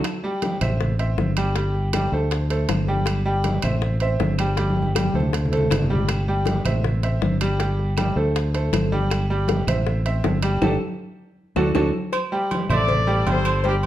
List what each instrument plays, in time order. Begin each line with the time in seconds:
0.04 high bongo, high conga, high timbale, claves
0.24 grand piano G3 G4 G5, high conga
0.42 high bongo, high conga, high timbale
0.61 fingered electric bass A1, grand piano C4 C5 E5, high conga, low conga, high timbale, claves
0.81 high bongo, high conga, low conga
0.99 grand piano C4 C5 E5, high conga, high timbale
1.18 fingered electric bass G1, high bongo, low bongo, high conga
1.37 grand piano G3 G4 G5, high conga, high timbale, claves
1.56 grand piano G3 G4 G5, high bongo, high timbale
1.74 high bongo, high conga
1.93 grand piano G3 G4 G5, high bongo, high conga, high timbale, claves
2.12 fingered electric bass D2, grand piano A3 A4 C5, high conga
2.31 high bongo, high conga, high timbale
2.50 grand piano A3 A4 C5, high bongo, high conga, high timbale
2.69 fingered electric bass G1, high bongo, low bongo, high conga, high timbale, claves
2.88 grand piano G3 G4 G5, high bongo, high conga
3.06 high bongo, high conga, high timbale, claves
3.25 grand piano G3 G4 G5
3.44 high bongo, high conga, high timbale
3.62 fingered electric bass A1, grand piano C4 C5 E5, high conga, low conga, high timbale, claves
3.82 high bongo, high conga
4.00 grand piano C4 C5 E5, high conga, high timbale
4.20 fingered electric bass G1, high bongo, low bongo, high conga, low timbale
4.38 grand piano G3 G4 G5, high conga, high timbale, claves
4.57 grand piano G3 G4 G5, high bongo, high conga, high timbale
4.70 high conga
4.76 high bongo
4.82 high conga
4.95 grand piano G3 G4 G5, high bongo, high conga, high timbale, claves
5.14 fingered electric bass D2, grand piano A3 A4 C5
5.20 low conga
5.33 high bongo, high timbale
5.45 low conga
5.52 grand piano A3 A4 C5, high bongo, high timbale
5.57 low conga
5.70 fingered electric bass G1, high bongo, low bongo, low conga, high timbale, claves
5.83 low conga
5.90 grand piano G3 G4 G5, high bongo
5.95 low conga
6.08 high bongo, high conga, high timbale, claves
6.28 grand piano G3 G4 G5
6.45 high bongo, high conga, high timbale
6.65 fingered electric bass A1, grand piano C4 C5 E5, high conga, low conga, high timbale, claves
6.84 high bongo, high conga, low conga
7.03 grand piano C4 C5 E5, high conga, high timbale
7.22 fingered electric bass G1, high bongo, low bongo, high conga
7.41 grand piano G3 G4 G5, high conga, high timbale, claves
7.59 grand piano G3 G4 G5, high bongo, high conga, high timbale
7.79 high bongo, high conga
7.97 grand piano G3 G4 G5, high bongo, high conga, high timbale, claves
8.16 fingered electric bass D2, grand piano A3 A4 C5, high conga
8.36 high bongo, high conga, high timbale
8.54 grand piano A3 A4 C5, high bongo, high conga, high timbale
8.72 fingered electric bass G1, high bongo, low bongo, high conga, high timbale, claves
8.92 grand piano G3 G4 G5, high bongo, high conga
9.11 high bongo, high conga, high timbale, claves
9.29 grand piano G3 G4 G5, high conga
9.48 high bongo, high conga, high timbale
9.67 fingered electric bass A1, grand piano C4 C5 E5, high conga, low conga, high timbale, claves
9.87 high bongo, high conga
10.05 grand piano C4 C5 E5, high conga, high timbale
10.24 fingered electric bass G1, high bongo, low bongo, high conga, low timbale
10.43 grand piano G3 G4 G5, high conga, high timbale, claves
10.62 fingered electric bass G1, grand piano D4 G4 A4, low bongo, high conga, high timbale, claves
11.56 fingered electric bass D2, grand piano D4 F#4 A4, low bongo, high conga, high timbale, claves
11.75 fingered electric bass D2, grand piano D4 F#4 A4, low bongo, high conga, high timbale, claves
12.13 cowbell, high conga, low agogo, claves
12.32 grand piano G3 G4 G5, high conga
12.51 cowbell, high conga, low agogo
12.69 fingered electric bass A1, grand piano C4 C5 E5, horn section A4 D5, high conga, low conga, low agogo, claves
12.88 cowbell, high conga, low conga
13.07 grand piano G3 G4 G5, high conga
13.26 fingered electric bass G1, grand piano G3 G4 G5, horn section A4 C5, cowbell, high conga, low timbale, low agogo
13.45 cowbell, high conga, low agogo, claves
13.64 grand piano G3 G4 G5, horn section D4 G4, cowbell, high conga
13.83 low agogo